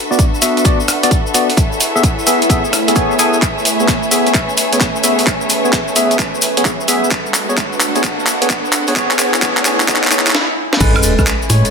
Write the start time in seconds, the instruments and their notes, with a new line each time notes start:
Already playing: ambient pad A3 D4 B4 G#5, violin section F#4 A4 B4 E5
0.11 tine electric piano B3 F#4 D5, ambient pad F#5, cabasa
0.19 kick, closed hi-hat, cabasa
0.34 cabasa
0.42 tine electric piano B3 F#4 E5, open hi-hat, cabasa
0.57 closed hi-hat, cabasa
0.65 tine electric piano B3 F#4 D5, kick, closed hi-hat, cabasa
0.80 cabasa
0.88 cross-stick, open hi-hat, cabasa
1.03 tine electric piano B3 F#4 D5, closed hi-hat, cabasa
1.11 kick, closed hi-hat, cabasa
1.27 cabasa
1.34 tine electric piano B3 F#4 D5, open hi-hat, cabasa
1.50 open hi-hat, cabasa
1.57 ambient pad E4, violin section G#4 C#5, kick, closed hi-hat, cabasa
1.72 cabasa
1.80 open hi-hat, cabasa
1.86 ambient pad A3
1.96 tine electric piano B3 G#4 A4 E5, cabasa
2.03 ambient pad B4, kick, closed hi-hat, cabasa
2.19 cabasa
2.27 tine electric piano B3 G#4 A4 E5, open hi-hat, cabasa
2.41 ambient pad G#5, closed hi-hat, cabasa
2.50 tine electric piano B3 G#4 A4 E5, kick, closed hi-hat, cabasa
2.65 cabasa
2.73 cross-stick, open hi-hat, cabasa
2.88 tine electric piano B3 G#4 A4 E5, closed hi-hat, cabasa
2.96 tine electric piano B3 G#4 A4 C#5, kick, closed hi-hat, cabasa
3.11 cabasa
3.19 tine electric piano B3 G#4 A4 G#5, open hi-hat, cabasa
3.33 cabasa
3.42 violin section A3, ambient pad C#4, kick, clap, closed hi-hat, riser, cabasa
3.58 cabasa
3.65 open hi-hat, cabasa
3.80 tine electric piano B3 G#4 C#5, cabasa
3.88 kick, clap, closed hi-hat, cabasa
4.03 cabasa
4.11 tine electric piano B3 G#4 E5, open hi-hat, cabasa
4.27 closed hi-hat, cabasa
4.34 kick, clap, closed hi-hat, cabasa
4.49 cabasa
4.57 open hi-hat, cabasa
4.73 tine electric piano B3 G#4 C#5, closed hi-hat, cabasa
4.80 kick, clap, closed hi-hat, cabasa
4.96 cabasa
5.04 tine electric piano B3 G#4 E5, open hi-hat, cabasa
5.19 open hi-hat, cabasa
5.27 kick, clap, closed hi-hat, cabasa
5.41 cabasa
5.50 open hi-hat, cabasa
5.65 tine electric piano B3 G#4 C#5, cabasa
5.73 kick, clap, closed hi-hat, cabasa
5.88 cabasa
5.96 tine electric piano B3 G#4 E5, open hi-hat, cabasa
6.11 closed hi-hat, cabasa
6.19 kick, clap, closed hi-hat, cabasa
6.35 cabasa
6.42 open hi-hat, cabasa
6.57 tine electric piano B3 G#4 C#5, closed hi-hat, cabasa
6.65 kick, clap, closed hi-hat, cabasa
6.81 cabasa
6.88 tine electric piano B3 G#4 E5, open hi-hat, cabasa
7.04 cabasa
7.10 ambient pad D4, violin section F#4 A4, kick, clap, closed hi-hat, cabasa
7.26 cabasa
7.34 clap, open hi-hat, cabasa
7.45 ambient pad F#5
7.49 tine electric piano B3 G#4 C#5, cabasa
7.57 kick, clap, closed hi-hat, cabasa
7.73 cabasa
7.80 clap, open hi-hat, cabasa
7.95 tine electric piano B3 G#4 C#5, closed hi-hat, cabasa
8.03 kick, clap, closed hi-hat, cabasa
8.20 cabasa
8.27 clap, open hi-hat, cabasa
8.42 tine electric piano B3 G#4 C#5, closed hi-hat, cabasa
8.50 kick, clap, closed hi-hat, cabasa
8.65 cabasa
8.72 clap, open hi-hat, cabasa
8.87 tine electric piano B3 G#4 C#5, open hi-hat, cabasa
8.96 ambient pad E4, tine electric piano G#4 C#5, violin section G#4 C#5, kick, clap, closed hi-hat, cabasa
9.11 clap, cabasa
9.19 tine electric piano B3 G#4 C#5, clap, open hi-hat, cabasa
9.27 ambient pad A3
9.34 clap, cabasa
9.42 tine electric piano B3 G#4 C#5, kick, clap, closed hi-hat, cabasa
9.57 clap, cabasa
9.65 tine electric piano B3 G#4 C#5, clap, open hi-hat, cabasa
9.77 ambient pad G#5, clap, closed hi-hat, cabasa
9.88 tine electric piano B3 G#4 C#5, kick, clap, closed hi-hat, cabasa
9.96 clap
10.03 clap, cabasa
10.07 tine electric piano B3 G#4 C#5, clap
10.11 clap, open hi-hat, cabasa
10.19 clap
10.26 clap, closed hi-hat, cabasa
10.31 snare, clap
10.73 snare
10.80 fm bass A1, tine electric piano G#3 C#4 B4, violin section C#4 E4 G#4 B4, ambient pad C#4, vibraphone A4, kick, closed hi-hat, crash, sub drop, cabasa
10.96 cross-stick, cabasa, high woodblock
11.03 fm bass E1, vibraphone A4, open hi-hat, cabasa
11.19 tine electric piano G#3 C#4 B4, kick, cross-stick, cabasa
11.27 clap, closed hi-hat, cabasa
11.42 cabasa
11.50 fm bass A2, tine electric piano G#3 C#4 C#5, open hi-hat, cabasa
11.65 vibraphone A4, closed hi-hat, cabasa